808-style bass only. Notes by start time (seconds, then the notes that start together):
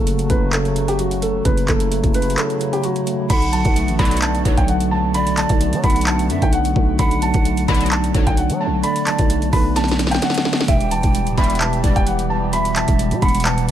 Already playing: F#1
0.30 F#1
1.45 F#1
1.68 F#1
2.04 F#1
3.30 B1
3.65 B1
3.88 A1
3.99 B1
4.45 B1
5.50 B1
5.73 F#3
5.84 B1
6.30 F#2
6.42 B1
6.76 B1
6.99 B1
7.34 B1
7.68 B1
8.14 B1
8.27 B1
8.50 F#3
8.67 B1
9.19 B1
9.53 B1
10.68 E1
11.04 E1
11.27 D1
11.38 E1
11.84 E1
12.88 E1
13.11 B2
13.22 E1